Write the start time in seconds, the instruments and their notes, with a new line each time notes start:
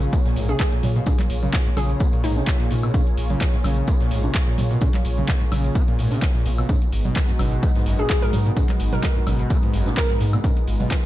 Already playing: acid bass C#3, analog synth pad A#3 F4 G#4 C#5
0.02 closed hi-hat, shaker
0.13 acid bass C#4, kick, closed hi-hat, tambourine, shaker
0.25 acid bass A#2, snare, closed hi-hat
0.36 analog synth bass A#1, acid bass G#2, snare, open hi-hat, tambourine, shaker
0.49 acid bass C#3, synth pluck G#4, closed hi-hat, high conga, shaker
0.59 acid bass A#2, synth pluck G#4, kick, snare, clap, closed hi-hat, tambourine, shaker
0.72 acid bass A#2, snare, closed hi-hat
0.83 analog synth bass A#2, acid bass C#3, open hi-hat, tambourine, low conga, shaker
0.96 acid bass B2, closed hi-hat, shaker
1.06 acid bass A#2, kick, closed hi-hat, tambourine, high conga, shaker
1.19 snare, clap, closed hi-hat, low conga
1.30 analog synth bass A#1, open hi-hat, tambourine, shaker
1.43 acid bass C#3, closed hi-hat, low conga, shaker
1.53 acid bass A#2, kick, snare, clap, closed hi-hat, shaker
1.66 acid bass G#2, closed hi-hat
1.77 analog synth bass A#1, acid bass C#3, synth pluck G#4, open hi-hat, tambourine, high conga, low conga, high woodblock, shaker
1.90 closed hi-hat, shaker
2.00 acid bass C#4, kick, closed hi-hat, tambourine, shaker
2.13 acid bass A#2, closed hi-hat
2.24 analog synth bass A#1, acid bass G#2, synth pluck D#4, open hi-hat, tambourine, shaker
2.36 acid bass C#3, snare, closed hi-hat, high conga, shaker
2.47 acid bass A#2, kick, snare, clap, closed hi-hat, tambourine, shaker
2.60 acid bass A#2, snare, closed hi-hat
2.71 analog synth bass A#2, acid bass C#3, open hi-hat, tambourine, shaker
2.83 acid bass B2, closed hi-hat, high woodblock, shaker
2.94 acid bass A#2, kick, closed hi-hat, tambourine, high conga, shaker
3.07 closed hi-hat
3.17 analog synth bass A#1, open hi-hat, tambourine, shaker
3.29 acid bass C#3, closed hi-hat, low conga, shaker
3.41 acid bass A#2, kick, snare, clap, closed hi-hat, tambourine, shaker
3.53 acid bass G#2, snare, closed hi-hat
3.64 analog synth bass A#1, acid bass C#3, snare, open hi-hat, tambourine, high conga, low conga, high woodblock, shaker
3.77 closed hi-hat, shaker
3.87 acid bass C#4, kick, closed hi-hat, tambourine, shaker
4.00 acid bass A#2, snare, closed hi-hat
4.11 analog synth bass A#1, acid bass G#2, snare, open hi-hat, tambourine, shaker
4.24 acid bass C#3, closed hi-hat, high conga, shaker
4.34 acid bass A#2, kick, snare, clap, closed hi-hat, tambourine, shaker
4.47 acid bass A#2, snare, closed hi-hat
4.58 analog synth bass A#2, acid bass C#3, open hi-hat, tambourine, low conga, shaker
4.71 acid bass B2, closed hi-hat, shaker
4.81 acid bass A#2, kick, closed hi-hat, tambourine, high conga, shaker
4.94 snare, clap, closed hi-hat, low conga
5.05 analog synth bass A#1, open hi-hat, tambourine, shaker
5.18 acid bass C#3, closed hi-hat, low conga, shaker
5.28 acid bass A#2, kick, snare, clap, closed hi-hat, tambourine, shaker
5.41 acid bass G#2, closed hi-hat
5.52 analog synth bass A#1, acid bass C#3, open hi-hat, tambourine, high conga, low conga, high woodblock, shaker
5.64 closed hi-hat, shaker
5.75 acid bass C#4, kick, closed hi-hat, tambourine, shaker
5.88 acid bass A#2, closed hi-hat
5.99 acid bass G#2, analog synth bass A#2, open hi-hat, tambourine, shaker
6.11 acid bass C#3, snare, open hi-hat, high conga, shaker
6.22 acid bass A#2, kick, snare, clap, closed hi-hat, tambourine, shaker
6.35 acid bass A#2, snare, closed hi-hat
6.45 analog synth bass A#1, acid bass C#3, open hi-hat, tambourine, shaker
6.58 acid bass B2, closed hi-hat, high woodblock, shaker
6.69 acid bass G#2, analog synth pad G#3 B3 D#4 F#4, kick, closed hi-hat, tambourine, high conga, shaker
6.82 closed hi-hat
6.92 analog synth bass G#1, open hi-hat, tambourine, shaker
7.05 acid bass B2, closed hi-hat, low conga, shaker
7.16 acid bass G#2, kick, snare, clap, closed hi-hat, tambourine, shaker
7.28 acid bass F#2, snare, closed hi-hat
7.39 analog synth bass G#1, acid bass B2, snare, open hi-hat, tambourine, high conga, low conga, high woodblock, shaker
7.52 closed hi-hat, shaker
7.63 acid bass B3, kick, closed hi-hat, tambourine, shaker
7.75 acid bass G#2, snare, closed hi-hat
7.86 analog synth bass G#1, acid bass F#2, snare, open hi-hat, tambourine, shaker
7.99 acid bass B2, synth pluck G#4, closed hi-hat, high conga, shaker
8.09 acid bass G#2, synth pluck G#4, kick, snare, clap, closed hi-hat, tambourine, shaker
8.22 acid bass G#2, synth pluck A#4, snare, closed hi-hat
8.33 analog synth bass G#2, acid bass B2, open hi-hat, tambourine, low conga, shaker
8.46 acid bass A#2, closed hi-hat, shaker
8.56 acid bass G#2, kick, closed hi-hat, tambourine, high conga, shaker
8.69 snare, clap, closed hi-hat, low conga
8.80 analog synth bass G#1, open hi-hat, tambourine, shaker
8.93 acid bass B2, synth pluck A#4, closed hi-hat, low conga, shaker
9.03 acid bass G#2, kick, snare, clap, closed hi-hat, tambourine, shaker
9.16 acid bass F#2, closed hi-hat
9.27 analog synth bass G#1, acid bass B2, open hi-hat, tambourine, high conga, low conga, high woodblock, shaker
9.39 closed hi-hat, shaker
9.50 acid bass B3, kick, closed hi-hat, tambourine, shaker
9.63 acid bass G#2, closed hi-hat
9.74 analog synth bass G#1, acid bass F#2, open hi-hat, tambourine, shaker
9.86 acid bass B2, snare, closed hi-hat, high conga, shaker
9.97 acid bass G#2, synth pluck A#4, kick, snare, clap, closed hi-hat, tambourine, shaker
10.09 acid bass G#2, snare, closed hi-hat
10.21 analog synth bass G#2, acid bass B2, open hi-hat, tambourine, shaker
10.33 acid bass A#2, closed hi-hat, high woodblock, shaker
10.44 acid bass G#2, analog synth pad F4, kick, closed hi-hat, tambourine, high conga, shaker
10.57 closed hi-hat
10.67 analog synth bass G#1, open hi-hat, tambourine, shaker
10.80 acid bass B2, closed hi-hat, low conga, shaker
10.90 acid bass G#2, kick, snare, clap, closed hi-hat, tambourine, shaker
11.02 snare